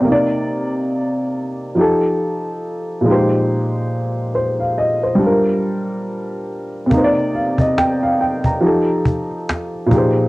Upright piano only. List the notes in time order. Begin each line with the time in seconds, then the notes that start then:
Already playing: D5
0.01 C3 A#3
0.08 D#4 D5
1.75 F3 D#4 G4
1.81 A4
3.01 A#2 F3
3.05 G#3 D#4
3.10 G4 C5
4.35 C5
4.60 F5
4.78 D#5
5.03 C5
5.15 G3 D4
5.23 F4 A#4
6.86 C3 A#3
6.94 D#4 C5
7.04 D5
7.35 F5
7.60 D#5
7.78 G5
8.03 F5
8.21 G5
8.46 A#5
8.61 F3 D#4 G4
8.66 A4
9.86 A#2 F3
9.91 D#4 G4
9.95 G#4 C5